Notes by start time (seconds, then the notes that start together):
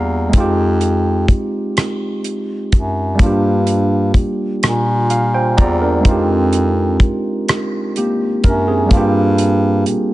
Already playing: E2 G3 A#3 D4 F4 G4 F5 A#5
0.29 G#3 C4
0.33 F2 D#4, kick, closed hi-hat
0.38 F4 G4
0.81 closed hi-hat
1.28 F#2, kick, closed hi-hat
1.77 cross-stick, closed hi-hat
2.24 closed hi-hat
2.72 F#2, kick, closed hi-hat
3.15 G3 A#3
3.19 G2 D4, kick, closed hi-hat
3.23 F4 G4
3.67 closed hi-hat
4.14 A#2, kick, closed hi-hat
4.63 A#2, cross-stick, closed hi-hat
5.10 F5, closed hi-hat
5.34 C5 G5
5.57 E2 F4 D5 A#5, kick, closed hi-hat
5.81 D4 A#4
6.00 G#3 C4
6.05 F2 D#4 F4, kick, closed hi-hat
6.11 G4
6.53 closed hi-hat
7.00 F#2, kick, closed hi-hat
7.49 cross-stick, closed hi-hat
7.96 A#3 G4, closed hi-hat
8.44 F#2 D4 A#4, kick, closed hi-hat
8.68 C4 G#4
8.86 G3 A#3
8.91 G2 D4 F4, kick, closed hi-hat
8.97 G4
9.38 closed hi-hat
9.86 A#2, closed hi-hat